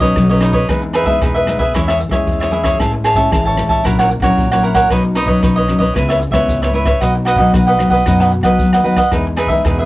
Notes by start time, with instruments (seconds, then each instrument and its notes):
Already playing: upright bass B1, nylon-string guitar B2
0.00 nylon-string guitar F#3 C#4 D#4, cavaquinho B4 C#5 D#5, kick, closed hi-hat
0.16 upright bass B1, nylon-string guitar F#3, kick, cross-stick, closed hi-hat
0.30 nylon-string guitar F#3 C#4 D#4, cavaquinho B4 C#5 D#5, closed hi-hat
0.41 cavaquinho D#4 B4 C#5 D#5, cross-stick, closed hi-hat
0.53 cavaquinho B4 C#5 D#5, kick
0.68 upright bass E2, nylon-string guitar E3 G#3 B3 D#4, cavaquinho D#4 G#4 B4 E5, kick, cross-stick, closed hi-hat
0.82 muted cavaquinho stroke
0.93 cavaquinho D#4 G#4 B4 E5, cross-stick, closed hi-hat
1.04 upright bass E3, nylon-string guitar G#3 B3 D#4, cavaquinho G#4 B4 E5, kick
1.22 upright bass E2, nylon-string guitar B2, cavaquinho D#4 G#4 B4 E5, kick, cross-stick, closed hi-hat
1.35 cavaquinho G#4 B4 E5
1.47 nylon-string guitar G#3 B3 D#4, cross-stick, closed hi-hat
1.56 upright bass E2, cavaquinho B4 E5, kick
1.61 cavaquinho G#4
1.74 upright bass E2, nylon-string guitar E3 G#3 C#4 E4, cavaquinho E4 G#4 C#5 E5, kick, cross-stick, closed hi-hat
1.88 cavaquinho G#4 C#5 E5, cross-stick, closed hi-hat
2.00 muted cavaquinho stroke, closed hi-hat
2.09 upright bass E2, nylon-string guitar G#3 C#4 E4, cavaquinho G#4 C#5 E5, kick, cross-stick
2.27 upright bass E2, nylon-string guitar E3, kick, closed hi-hat
2.40 cavaquinho G#4 C#5 E5, cross-stick
2.51 nylon-string guitar G#3 C#4 E4, cavaquinho E4 G#4 C#5 E5, closed hi-hat
2.63 cavaquinho G#4 C#5 E5, kick, cross-stick, closed hi-hat
2.79 upright bass A1, nylon-string guitar A2 G#3 C#4 E4, cavaquinho G#4 C#5 E5 A5, kick, cross-stick, closed hi-hat
2.93 muted cavaquinho stroke
3.04 cavaquinho G#4 C#5 E5 A5, cross-stick, closed hi-hat
3.14 upright bass A2, nylon-string guitar G#3 C#4 E4, cavaquinho C#5 E5 A5, kick, closed hi-hat
3.31 upright bass A1, nylon-string guitar E3, cavaquinho G#4 C#5 E5 A5, kick, cross-stick, closed hi-hat
3.45 cavaquinho C#5 E5 A5, closed hi-hat
3.57 nylon-string guitar G#3 C#4 E4, cross-stick, closed hi-hat
3.67 upright bass A1, cavaquinho C#5 E5 A5, kick, closed hi-hat
3.84 upright bass A#1, nylon-string guitar A#2 F#3 C#4 E4, cavaquinho E4 A#4 C#5 F#5, kick, cross-stick, closed hi-hat
3.99 cavaquinho A#4 C#5 F#5, cross-stick, closed hi-hat
4.10 muted cavaquinho stroke, closed hi-hat
4.20 upright bass A#1, nylon-string guitar F#3 C#4 E4, cavaquinho C#5 F#5, kick, cross-stick
4.24 cavaquinho A#4
4.38 upright bass A#1, nylon-string guitar A#2, kick, closed hi-hat
4.51 nylon-string guitar F#3 C#4 E4, cavaquinho A#4 C#5 F#5, cross-stick, closed hi-hat
4.62 cavaquinho E4 A#4 C#5 F#5, closed hi-hat
4.75 cavaquinho A#4 C#5 F#5, kick, cross-stick, closed hi-hat
4.90 upright bass B1, nylon-string guitar B2 F#3 C#4 D#4, cavaquinho D#4 B4 C#5 D#5, kick, cross-stick, closed hi-hat
5.04 muted cavaquinho stroke
5.15 cavaquinho D#4 B4 C#5 D#5, cross-stick, closed hi-hat
5.25 upright bass B2, nylon-string guitar F#3 C#4 D#4, cavaquinho B4 C#5 D#5, kick
5.42 upright bass B1, nylon-string guitar F#3, cavaquinho D#4 B4 C#5 D#5, kick, cross-stick, closed hi-hat
5.56 cavaquinho B4 C#5 D#5
5.68 nylon-string guitar F#3 C#4 D#4, cross-stick, closed hi-hat
5.78 upright bass B1, cavaquinho B4 C#5 D#5, kick
5.94 upright bass C#2, nylon-string guitar C#3 G#3 B3 E4, cavaquinho E4 B4 C#5 E5, kick, cross-stick, closed hi-hat
6.09 cavaquinho B4 C#5 E5, cross-stick, closed hi-hat
6.20 muted cavaquinho stroke, closed hi-hat
6.31 upright bass C#2, nylon-string guitar G#3 B3 E4, cavaquinho B4 C#5 E5, kick, cross-stick
6.48 upright bass C#2, nylon-string guitar G#2, kick, closed hi-hat
6.62 cavaquinho B4 C#5 E5, cross-stick
6.73 nylon-string guitar G#3 B3 E4, cavaquinho E4 B4 C#5 E5, closed hi-hat
6.85 cavaquinho B4 C#5 E5, kick, cross-stick, closed hi-hat
7.01 upright bass B1, nylon-string guitar B2 F#3 B3 D#4, cavaquinho F#4 B4 D#5 F#5, kick, cross-stick, closed hi-hat
7.15 muted cavaquinho stroke
7.25 cavaquinho F#4 B4 D#5 F#5, cross-stick, closed hi-hat
7.36 upright bass B2, nylon-string guitar F#3 B3 D#4, cavaquinho B4 D#5 F#5, kick, closed hi-hat
7.54 upright bass B1, nylon-string guitar F#3, cavaquinho F#4 B4 D#5 F#5, kick, cross-stick, closed hi-hat
7.67 cavaquinho B4 D#5 F#5, closed hi-hat
7.78 nylon-string guitar F#3 B3 D#4, cross-stick, closed hi-hat
7.89 upright bass B1, cavaquinho B4 D#5 F#5, kick, closed hi-hat
8.06 upright bass F#2, nylon-string guitar B2 F#3 B3 D#4, cavaquinho F#4 B4 D#5 F#5, kick, cross-stick, closed hi-hat
8.20 cavaquinho B4 D#5 F#5, cross-stick, closed hi-hat
8.31 muted cavaquinho stroke, closed hi-hat
8.41 upright bass B1, nylon-string guitar F#3 B3 D#4, cavaquinho D#5 F#5, kick, cross-stick
8.45 cavaquinho B4
8.59 upright bass D#2, nylon-string guitar F#3, kick, closed hi-hat
8.73 cavaquinho B4 D#5 F#5, cross-stick, closed hi-hat
8.84 nylon-string guitar F#3 B3 D#4, cavaquinho F#4 B4 D#5 F#5, closed hi-hat
8.96 cavaquinho B4 D#5 F#5, kick, cross-stick, closed hi-hat
9.12 upright bass E2, nylon-string guitar E3 G#3 B3 D#4, cavaquinho D#4 G#4 B4 E5, kick, cross-stick, closed hi-hat
9.26 muted cavaquinho stroke
9.36 cavaquinho D#4 G#4 B4 E5, cross-stick, closed hi-hat
9.47 upright bass E3, nylon-string guitar G#3 B3, cavaquinho G#4 B4 E5, kick
9.51 nylon-string guitar D#4
9.64 upright bass E2, nylon-string guitar B2, cavaquinho D#4 G#4 B4 E5, kick, cross-stick, closed hi-hat
9.78 cavaquinho G#4 B4 E5